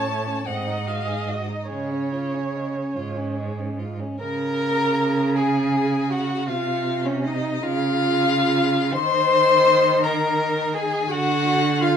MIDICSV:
0, 0, Header, 1, 5, 480
1, 0, Start_track
1, 0, Key_signature, -5, "major"
1, 0, Tempo, 791557
1, 525, Tempo, 834492
1, 1002, Time_signature, 6, 3, 24, 8
1, 2445, Tempo, 761421
1, 4365, Tempo, 808625
1, 4845, Tempo, 874636
1, 5325, Tempo, 749064
1, 5805, Tempo, 711744
1, 7348, End_track
2, 0, Start_track
2, 0, Title_t, "Violin"
2, 0, Program_c, 0, 40
2, 0, Note_on_c, 0, 81, 102
2, 284, Note_on_c, 0, 78, 84
2, 293, Note_off_c, 0, 81, 0
2, 531, Note_on_c, 0, 77, 81
2, 540, Note_off_c, 0, 78, 0
2, 768, Note_on_c, 0, 75, 69
2, 776, Note_off_c, 0, 77, 0
2, 1005, Note_off_c, 0, 75, 0
2, 1008, Note_on_c, 0, 73, 70
2, 1722, Note_off_c, 0, 73, 0
2, 2444, Note_on_c, 0, 82, 105
2, 3177, Note_on_c, 0, 80, 93
2, 3187, Note_off_c, 0, 82, 0
2, 3651, Note_on_c, 0, 78, 92
2, 3660, Note_off_c, 0, 80, 0
2, 3877, Note_off_c, 0, 78, 0
2, 3881, Note_on_c, 0, 77, 94
2, 4248, Note_on_c, 0, 73, 83
2, 4257, Note_off_c, 0, 77, 0
2, 4355, Note_off_c, 0, 73, 0
2, 4359, Note_on_c, 0, 75, 96
2, 4592, Note_on_c, 0, 77, 125
2, 4601, Note_off_c, 0, 75, 0
2, 5322, Note_on_c, 0, 84, 127
2, 5331, Note_off_c, 0, 77, 0
2, 6044, Note_on_c, 0, 82, 104
2, 6054, Note_off_c, 0, 84, 0
2, 6522, Note_off_c, 0, 82, 0
2, 6526, Note_on_c, 0, 80, 103
2, 6772, Note_on_c, 0, 78, 126
2, 6782, Note_off_c, 0, 80, 0
2, 7248, Note_on_c, 0, 77, 110
2, 7258, Note_off_c, 0, 78, 0
2, 7348, Note_off_c, 0, 77, 0
2, 7348, End_track
3, 0, Start_track
3, 0, Title_t, "Viola"
3, 0, Program_c, 1, 41
3, 0, Note_on_c, 1, 73, 76
3, 281, Note_on_c, 1, 75, 72
3, 290, Note_off_c, 1, 73, 0
3, 993, Note_off_c, 1, 75, 0
3, 996, Note_on_c, 1, 73, 68
3, 2068, Note_off_c, 1, 73, 0
3, 2443, Note_on_c, 1, 70, 97
3, 3176, Note_on_c, 1, 68, 73
3, 3186, Note_off_c, 1, 70, 0
3, 3648, Note_on_c, 1, 66, 75
3, 3658, Note_off_c, 1, 68, 0
3, 3879, Note_on_c, 1, 65, 75
3, 3889, Note_off_c, 1, 66, 0
3, 4239, Note_on_c, 1, 61, 74
3, 4249, Note_off_c, 1, 65, 0
3, 4364, Note_on_c, 1, 63, 88
3, 4373, Note_off_c, 1, 61, 0
3, 4593, Note_on_c, 1, 65, 82
3, 4602, Note_off_c, 1, 63, 0
3, 5316, Note_on_c, 1, 72, 98
3, 5324, Note_off_c, 1, 65, 0
3, 6036, Note_on_c, 1, 70, 88
3, 6046, Note_off_c, 1, 72, 0
3, 6521, Note_on_c, 1, 68, 86
3, 6531, Note_off_c, 1, 70, 0
3, 6757, Note_off_c, 1, 68, 0
3, 6761, Note_on_c, 1, 66, 101
3, 7240, Note_on_c, 1, 65, 101
3, 7251, Note_off_c, 1, 66, 0
3, 7348, Note_off_c, 1, 65, 0
3, 7348, End_track
4, 0, Start_track
4, 0, Title_t, "Violin"
4, 0, Program_c, 2, 40
4, 47, Note_on_c, 2, 57, 51
4, 158, Note_on_c, 2, 61, 58
4, 167, Note_off_c, 2, 57, 0
4, 274, Note_off_c, 2, 61, 0
4, 277, Note_on_c, 2, 60, 59
4, 410, Note_on_c, 2, 63, 53
4, 419, Note_off_c, 2, 60, 0
4, 528, Note_on_c, 2, 66, 54
4, 537, Note_off_c, 2, 63, 0
4, 643, Note_on_c, 2, 68, 49
4, 651, Note_off_c, 2, 66, 0
4, 768, Note_on_c, 2, 66, 51
4, 776, Note_off_c, 2, 68, 0
4, 884, Note_on_c, 2, 63, 53
4, 892, Note_off_c, 2, 66, 0
4, 997, Note_off_c, 2, 63, 0
4, 1001, Note_on_c, 2, 56, 50
4, 1126, Note_on_c, 2, 61, 50
4, 1135, Note_off_c, 2, 56, 0
4, 1251, Note_on_c, 2, 65, 50
4, 1260, Note_off_c, 2, 61, 0
4, 1373, Note_on_c, 2, 61, 49
4, 1382, Note_off_c, 2, 65, 0
4, 1498, Note_on_c, 2, 56, 45
4, 1506, Note_off_c, 2, 61, 0
4, 1613, Note_on_c, 2, 61, 54
4, 1622, Note_off_c, 2, 56, 0
4, 1731, Note_on_c, 2, 65, 53
4, 1739, Note_off_c, 2, 61, 0
4, 1852, Note_on_c, 2, 61, 50
4, 1860, Note_off_c, 2, 65, 0
4, 1967, Note_on_c, 2, 56, 48
4, 1975, Note_off_c, 2, 61, 0
4, 2090, Note_on_c, 2, 61, 46
4, 2099, Note_off_c, 2, 56, 0
4, 2206, Note_on_c, 2, 65, 46
4, 2214, Note_off_c, 2, 61, 0
4, 2326, Note_on_c, 2, 61, 56
4, 2335, Note_off_c, 2, 65, 0
4, 2442, Note_off_c, 2, 61, 0
4, 2445, Note_on_c, 2, 70, 89
4, 3153, Note_off_c, 2, 70, 0
4, 3177, Note_on_c, 2, 68, 73
4, 3644, Note_on_c, 2, 66, 74
4, 3654, Note_off_c, 2, 68, 0
4, 3880, Note_on_c, 2, 65, 72
4, 3889, Note_off_c, 2, 66, 0
4, 4241, Note_on_c, 2, 61, 66
4, 4251, Note_off_c, 2, 65, 0
4, 4363, Note_on_c, 2, 63, 68
4, 4372, Note_off_c, 2, 61, 0
4, 4596, Note_on_c, 2, 65, 86
4, 4605, Note_off_c, 2, 63, 0
4, 5323, Note_on_c, 2, 72, 112
4, 5332, Note_off_c, 2, 65, 0
4, 6039, Note_off_c, 2, 72, 0
4, 6043, Note_on_c, 2, 70, 86
4, 6529, Note_on_c, 2, 68, 92
4, 6539, Note_off_c, 2, 70, 0
4, 6772, Note_on_c, 2, 66, 98
4, 6782, Note_off_c, 2, 68, 0
4, 7250, Note_on_c, 2, 65, 92
4, 7260, Note_off_c, 2, 66, 0
4, 7348, Note_off_c, 2, 65, 0
4, 7348, End_track
5, 0, Start_track
5, 0, Title_t, "Cello"
5, 0, Program_c, 3, 42
5, 0, Note_on_c, 3, 45, 70
5, 163, Note_off_c, 3, 45, 0
5, 283, Note_on_c, 3, 44, 64
5, 879, Note_off_c, 3, 44, 0
5, 996, Note_on_c, 3, 49, 57
5, 1611, Note_off_c, 3, 49, 0
5, 1730, Note_on_c, 3, 44, 64
5, 2329, Note_off_c, 3, 44, 0
5, 2440, Note_on_c, 3, 49, 77
5, 3881, Note_on_c, 3, 48, 71
5, 3890, Note_off_c, 3, 49, 0
5, 4588, Note_off_c, 3, 48, 0
5, 4592, Note_on_c, 3, 49, 78
5, 5316, Note_on_c, 3, 51, 78
5, 5325, Note_off_c, 3, 49, 0
5, 6760, Note_off_c, 3, 51, 0
5, 6764, Note_on_c, 3, 50, 84
5, 7348, Note_off_c, 3, 50, 0
5, 7348, End_track
0, 0, End_of_file